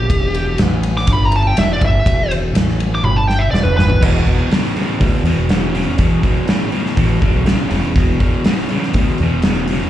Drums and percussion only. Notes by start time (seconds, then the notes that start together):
0.10 kick, ride
0.34 ride
0.58 snare, ride
0.83 ride
0.97 snare
1.07 kick, ride
1.32 ride
1.57 snare, ride
1.81 kick, ride
2.06 kick, ride
2.31 ride
2.55 snare, ride
2.69 snare
2.80 ride
3.04 high tom
3.30 snare
3.54 snare
3.65 mid tom
3.79 snare
3.90 floor tom
4.03 kick, crash
4.27 kick, open hi-hat
4.51 snare, open hi-hat
4.76 open hi-hat
5.01 kick, open hi-hat
5.25 open hi-hat
5.49 snare, open hi-hat
5.75 open hi-hat
5.98 kick, open hi-hat
6.23 kick, open hi-hat
6.48 snare, open hi-hat
6.72 open hi-hat
6.86 snare
6.97 kick, open hi-hat
7.22 kick, open hi-hat
7.46 snare, open hi-hat
7.71 open hi-hat
7.96 kick, open hi-hat
8.20 kick, open hi-hat
8.44 snare, open hi-hat
8.69 open hi-hat
8.83 snare
8.94 kick, open hi-hat
9.18 open hi-hat
9.42 snare, open hi-hat
9.67 open hi-hat